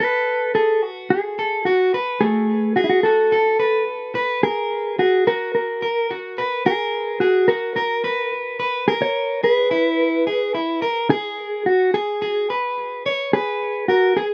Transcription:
0.00 0.51 A4 medium
0.00 0.54 B4 loud
0.55 0.82 G#4 medium
0.55 0.80 A4 medium
0.82 1.34 F#4 medium
1.10 1.65 G#4 loud
1.39 1.66 A4 medium
1.65 1.91 F#4 medium
1.65 1.94 F#4 medium
1.94 2.21 B4 medium
2.21 2.77 A3 medium
2.21 2.72 G#4 medium
2.76 2.83 F#4 medium
2.76 3.04 G#4 medium
2.84 2.89 E4 medium
2.90 3.03 F#4 loud
3.03 3.32 F#4 medium
3.03 3.83 A4 medium
3.32 3.59 A4 medium
3.60 4.12 B4 medium
4.15 4.43 B4 loud
4.43 4.99 G#4 medium
4.43 4.95 A#4 medium
4.99 5.27 F#4 medium
4.99 5.27 G#4 medium
5.27 5.79 F#4 medium
5.27 5.54 A#4 loud
5.55 6.06 A#4 medium
5.82 6.10 A#4 medium
6.11 6.38 F#4 medium
6.38 6.65 B4 loud
6.66 7.23 G#4 medium
6.66 7.18 A#4 medium
7.20 7.49 F#4 medium
7.20 7.49 G#4 medium
7.48 7.77 F#4 medium
7.48 7.75 A#4 loud
7.76 8.28 A#4 medium
7.76 8.04 A#4 medium
8.04 8.57 B4 medium
8.60 8.88 B4 loud
8.88 8.93 G#4 medium
8.88 9.40 A#4 medium
9.02 9.44 C#5 loud
9.43 9.71 G#4 medium
9.43 10.51 B4 loud
9.71 10.24 E4 medium
10.27 10.54 G#4 medium
10.55 10.82 E4 medium
10.82 11.10 A#4 loud
11.10 11.66 G#4 loud
11.10 11.66 G#4 medium
11.66 11.94 F#4 loud
11.66 11.94 F#4 medium
11.94 12.46 G#4 medium
11.94 12.21 G#4 medium
12.22 12.50 G#4 medium
12.50 13.03 B4 medium
13.06 13.33 C#5 loud
13.33 13.86 G#4 medium
13.33 13.86 B4 medium
13.88 14.15 F#4 medium
13.88 14.17 A#4 medium
14.17 14.24 G#4 loud
14.17 14.34 G#4 medium

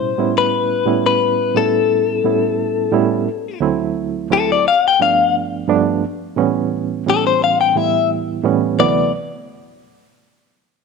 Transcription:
0.00 0.14 A2 medium
0.00 0.14 B2 medium
0.00 0.14 G3 medium
0.00 0.15 C#4 medium
0.00 0.15 E4 medium
0.00 0.34 C5 medium
0.18 0.83 A2 medium
0.18 0.83 G3 medium
0.18 0.83 B3 medium
0.18 0.84 C#4 medium
0.18 0.84 E4 medium
0.38 1.04 B4 medium
0.85 1.51 A2 medium
0.85 1.51 G3 medium
0.85 1.52 B3 medium
0.85 1.52 C#4 medium
0.85 1.52 E4 medium
1.06 1.55 B4 medium
1.54 2.20 A2 medium
1.54 2.20 G3 medium
1.54 2.21 B3 medium
1.54 2.21 C#4 medium
1.54 2.21 E4 medium
1.54 3.59 A4 medium
2.24 2.89 A2 medium
2.24 2.89 G3 medium
2.24 2.90 B3 medium
2.24 2.90 C#4 medium
2.24 2.90 E4 medium
2.92 3.27 A2 medium
2.92 3.27 G3 medium
2.92 3.28 B3 medium
2.92 3.28 C#4 medium
2.92 3.28 E4 medium
3.60 4.26 D2 loud
3.60 4.27 F#3 medium
3.60 4.27 A3 medium
3.60 4.27 C4 medium
3.60 4.27 E4 loud
4.30 4.65 D2 medium
4.30 4.65 F#3 medium
4.30 4.65 A3 medium
4.30 4.66 C4 medium
4.30 4.66 E4 medium
4.30 4.50 A4 loud
4.52 4.66 D5 medium
4.68 4.84 F5 medium
4.88 5.02 G5 medium
4.99 5.65 G2 medium
4.99 5.65 F3 medium
4.99 5.65 A3 medium
4.99 5.66 B3 medium
4.99 5.66 D4 medium
4.99 5.35 F5 medium
5.68 6.03 G2 medium
5.68 6.03 F3 medium
5.68 6.03 A3 medium
5.68 6.04 B3 medium
5.68 6.04 D4 loud
6.36 7.02 A2 medium
6.36 7.03 E3 medium
6.36 7.03 G3 medium
6.36 7.03 B3 medium
6.36 7.03 C#4 loud
7.06 7.72 A2 medium
7.06 7.72 E3 medium
7.06 7.72 G3 medium
7.06 7.72 B3 medium
7.06 7.73 C#4 medium
7.06 7.26 A4 loud
7.27 7.42 C5 medium
7.44 7.60 F5 medium
7.61 7.77 G5 medium
7.75 8.41 A2 medium
7.75 8.41 E3 medium
7.75 8.41 G3 medium
7.75 8.42 B3 medium
7.75 8.42 E4 medium
7.75 8.10 E5 medium
8.44 8.79 A2 medium
8.44 8.78 E3 medium
8.44 8.79 G3 medium
8.44 8.78 B3 medium
8.44 8.80 C#4 loud
8.79 9.12 D2 medium
8.79 9.11 C3 medium
8.79 9.11 E3 medium
8.79 9.11 F#3 medium
8.79 9.11 A3 medium
8.79 9.12 B3 medium
8.79 9.12 D5 medium

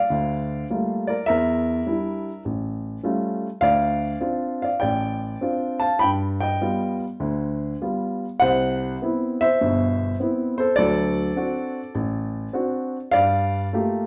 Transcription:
0.00 0.66 D5 medium
0.00 0.65 F5 loud
0.10 0.63 D2 medium
0.10 0.62 D3 medium
0.70 1.12 G3 soft
0.70 1.12 A3 soft
0.70 1.12 A#3 soft
0.70 1.12 F4 medium
1.07 1.27 A#4 medium
1.07 1.26 D5 medium
1.26 1.80 E2 medium
1.26 2.41 A#4 medium
1.26 2.40 E5 medium
1.86 2.28 G3 soft
1.86 2.29 D4 soft
1.86 2.29 E4 medium
2.45 2.96 A1 medium
3.04 3.46 G3 medium
3.04 3.46 A3 soft
3.04 3.46 C#4 soft
3.04 3.46 F4 medium
3.61 4.14 D2 medium
3.61 4.18 D5 medium
3.61 4.17 F5 loud
4.21 4.63 C4 medium
4.21 4.64 D4 medium
4.21 4.64 F4 medium
4.62 4.80 D5 medium
4.62 4.80 F5 medium
4.80 5.34 A1 medium
4.80 5.78 D5 medium
4.80 5.84 G5 medium
5.41 5.84 C4 medium
5.41 5.84 D4 soft
5.41 5.84 F4 medium
5.80 5.99 F5 medium
5.80 6.00 A5 medium
5.99 6.54 G2 medium
5.99 6.10 G5 medium
5.99 6.08 B5 loud
6.40 6.98 D#5 medium
6.40 6.96 G5 medium
6.61 7.03 G3 soft
6.61 7.03 B3 soft
6.61 7.03 F4 medium
7.20 7.73 D2 medium
7.20 7.73 D3 medium
7.82 8.24 G3 soft
7.82 8.24 B3 soft
7.82 8.25 F4 medium
8.40 8.94 C2 medium
8.40 8.98 C5 medium
8.40 8.97 F#5 loud
9.02 9.44 B3 soft
9.02 9.44 C4 soft
9.02 9.45 E4 medium
9.41 10.16 C5 medium
9.41 10.15 E5 loud
9.61 10.13 G1 medium
9.61 10.12 B2 medium
10.20 10.62 B3 soft
10.20 10.62 C4 soft
10.20 10.63 E4 medium
10.58 10.77 A4 medium
10.58 10.76 C5 medium
10.76 11.30 D2 medium
10.76 11.30 F#3 medium
10.76 11.92 A4 medium
10.76 11.90 D5 loud
11.36 11.78 C4 medium
11.36 11.79 D4 soft
11.36 11.79 F#4 medium
11.95 12.46 A1 medium
12.53 12.96 C4 medium
12.53 12.96 D4 soft
12.53 12.96 F#4 medium
13.12 13.65 G2 medium
13.12 13.69 D5 medium
13.12 13.68 F5 loud
13.73 14.07 A3 medium
13.73 14.07 A#3 soft
13.73 14.07 F4 soft
13.73 14.07 G4 medium

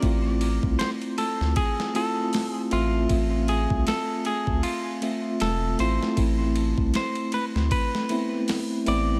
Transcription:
0.00 0.59 A1 medium
0.00 1.90 A3 medium
0.00 1.91 C4 medium
0.00 0.75 D5 loud
0.00 kick loud
0.00 ride medium
0.04 1.92 E4 medium
0.04 1.92 F4 medium
0.41 ride medium
0.63 0.78 C2 medium
0.63 kick loud
0.79 0.89 C5 loud
0.79 snare loud
0.79 ride medium
1.02 ride soft
1.18 1.56 A4 loud
1.18 ride medium
1.41 1.55 D2 medium
1.41 snare soft
1.56 1.96 G#4 loud
1.56 kick loud
1.56 ride medium
1.80 snare medium
1.94 2.10 A3 medium
1.94 2.10 C4 medium
1.94 2.11 E4 medium
1.94 2.11 F4 loud
1.94 2.50 A4 loud
1.94 ride medium
2.33 snare loud
2.33 open hi-hat medium
2.50 2.75 G#4 loud
2.71 3.06 A1 medium
2.71 3.06 A3 loud
2.71 3.06 C4 medium
2.71 3.51 F4 loud
2.71 3.07 F4 loud
2.71 3.07 E5 medium
2.71 ride medium
3.08 3.66 A1 loud
3.08 4.98 A3 medium
3.08 4.99 C4 medium
3.08 5.00 F4 medium
3.08 4.99 E5 medium
3.08 kick loud
3.08 ride medium
3.48 3.84 G#4 medium
3.48 ride medium
3.70 3.85 C2 medium
3.70 kick loud
3.87 4.26 A4 medium
3.87 snare loud
3.87 ride medium
4.25 4.62 G#4 medium
4.25 ride medium
4.47 4.62 D2 medium
4.47 kick loud
4.63 5.36 F4 medium
4.63 ride medium
5.02 5.75 A3 medium
5.02 5.75 C4 medium
5.02 5.76 F4 medium
5.02 5.76 E5 medium
5.02 ride medium
5.40 5.76 E1 medium
5.40 5.80 A4 medium
5.40 snare loud
5.40 ride medium
5.78 5.99 A1 medium
5.78 6.13 A3 medium
5.78 6.14 C4 medium
5.78 6.14 E4 medium
5.78 6.14 F4 loud
5.78 6.95 C5 loud
5.78 ride medium
6.03 snare soft
6.16 6.74 A1 loud
6.16 8.05 A3 medium
6.16 8.06 C4 medium
6.16 8.07 E4 medium
6.16 kick loud
6.16 ride medium
6.56 ride medium
6.78 6.93 C2 medium
6.78 kick loud
6.94 7.31 C5 medium
6.94 snare loud
6.94 ride medium
7.15 ride soft
7.32 7.44 B4 medium
7.32 ride medium
7.55 7.70 D2 medium
7.55 snare soft
7.71 8.88 B4 loud
7.71 kick loud
7.71 ride medium
7.95 snare medium
8.09 8.26 A3 medium
8.09 8.26 B3 medium
8.09 8.26 C4 medium
8.09 8.26 E4 loud
8.09 ride medium
8.48 snare loud
8.48 open hi-hat medium
8.86 9.20 A1 medium
8.86 9.20 A3 loud
8.86 9.20 B3 medium
8.86 9.20 C4 medium
8.86 9.20 E4 loud
8.86 9.20 D5 loud
8.86 ride medium

